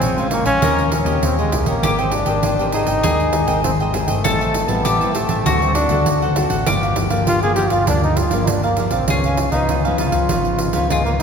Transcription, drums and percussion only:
0.01 pandeiro medium
0.18 pandeiro soft
0.31 pandeiro medium
0.46 pandeiro medium
0.62 pandeiro medium
0.79 pandeiro soft
0.92 pandeiro medium
1.06 pandeiro medium
1.23 pandeiro medium
1.38 pandeiro soft
1.52 pandeiro medium
1.66 pandeiro medium
1.83 pandeiro medium
1.99 pandeiro soft
2.12 pandeiro medium
2.26 pandeiro medium
2.43 pandeiro medium
2.59 pandeiro soft
2.72 pandeiro medium
2.87 pandeiro medium
3.04 pandeiro medium
3.20 pandeiro soft
3.33 pandeiro medium
3.48 pandeiro medium
3.64 pandeiro medium
3.80 pandeiro soft
3.94 pandeiro medium
4.08 pandeiro medium
4.25 pandeiro medium
4.41 pandeiro soft
4.54 pandeiro medium
4.68 pandeiro medium
4.85 pandeiro medium
5.01 pandeiro soft
5.15 pandeiro medium
5.29 pandeiro medium
5.46 pandeiro medium
5.62 pandeiro soft
5.75 pandeiro medium
5.89 pandeiro medium
6.06 pandeiro medium
6.22 pandeiro soft
6.36 pandeiro medium
6.50 pandeiro medium
6.66 pandeiro loud
6.83 pandeiro soft
6.96 pandeiro medium
7.10 pandeiro medium
7.27 pandeiro medium
7.43 pandeiro soft
7.56 pandeiro medium
7.70 pandeiro medium
7.87 pandeiro medium
8.04 pandeiro soft
8.17 pandeiro medium
8.31 pandeiro medium
8.47 pandeiro medium
8.63 pandeiro soft
8.77 pandeiro medium
8.91 pandeiro medium
9.08 pandeiro medium
9.24 pandeiro soft
9.37 pandeiro medium
9.52 pandeiro soft
9.69 pandeiro medium
9.85 pandeiro soft
9.98 pandeiro medium
10.12 pandeiro medium
10.29 pandeiro medium
10.45 pandeiro soft
10.59 pandeiro medium
10.73 pandeiro medium
10.90 pandeiro medium
11.06 pandeiro soft

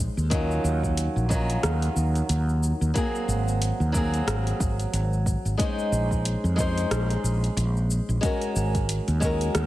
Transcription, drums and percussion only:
0.18 shaker soft
0.31 kick loud
0.31 closed hi-hat medium
0.31 shaker soft
0.51 shaker soft
0.65 shaker medium
0.83 kick medium
0.83 shaker soft
0.97 closed hi-hat medium
0.97 shaker soft
1.17 shaker soft
1.30 kick loud
1.30 shaker medium
1.50 closed hi-hat soft
1.50 shaker soft
1.63 cross-stick medium
1.63 closed hi-hat medium
1.63 shaker soft
1.82 closed hi-hat soft
1.82 shaker soft
1.97 shaker medium
2.15 closed hi-hat soft
2.15 shaker soft
2.29 closed hi-hat medium
2.29 shaker soft
2.49 shaker soft
2.63 shaker medium
2.82 shaker soft
2.95 kick loud
2.95 closed hi-hat medium
2.95 shaker soft
3.15 shaker soft
3.29 shaker medium
3.48 shaker soft
3.62 closed hi-hat medium
3.62 shaker soft
3.81 shaker soft
3.94 kick loud
3.94 shaker medium
4.14 closed hi-hat soft
4.14 shaker soft
4.28 cross-stick medium
4.28 closed hi-hat medium
4.28 shaker soft
4.47 closed hi-hat soft
4.47 shaker soft
4.60 kick loud
4.60 shaker medium
4.80 closed hi-hat soft
4.80 shaker soft
4.94 closed hi-hat medium
4.94 shaker soft
5.13 shaker soft
5.26 kick medium
5.26 shaker medium
5.46 shaker soft
5.59 kick loud
5.59 closed hi-hat medium
5.59 shaker soft
5.79 shaker soft
5.93 shaker medium
6.11 kick medium
6.11 shaker soft
6.25 closed hi-hat medium
6.25 shaker soft
6.45 shaker soft
6.58 kick loud
6.58 shaker medium
6.78 closed hi-hat soft
6.78 shaker soft
6.91 cross-stick medium
6.91 closed hi-hat medium
6.91 shaker soft
7.10 closed hi-hat soft
7.10 shaker soft
7.25 shaker medium
7.44 closed hi-hat soft
7.44 shaker soft
7.57 closed hi-hat medium
7.57 shaker soft
7.77 shaker soft
7.91 shaker medium
8.10 shaker soft
8.23 kick loud
8.23 closed hi-hat medium
8.23 shaker soft
8.42 closed hi-hat soft
8.42 shaker soft
8.56 shaker medium
8.75 kick medium
8.75 closed hi-hat soft
8.75 shaker soft
8.89 closed hi-hat medium
8.89 shaker soft
9.08 closed hi-hat soft
9.08 shaker soft
9.22 kick loud
9.22 shaker medium
9.41 closed hi-hat soft
9.41 shaker soft
9.55 cross-stick medium
9.55 closed hi-hat medium
9.55 shaker soft

